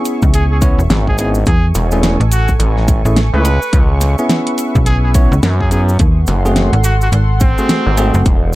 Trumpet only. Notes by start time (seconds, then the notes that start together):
0.34 G#4
0.51 G#4
1.08 G#4
1.19 G#4
1.47 G#4
2.31 F#4
3.34 B4
4.86 G#4
5.03 G#4
5.60 G#4
5.71 G#4
6.84 F#4
7.02 F#4
7.41 C4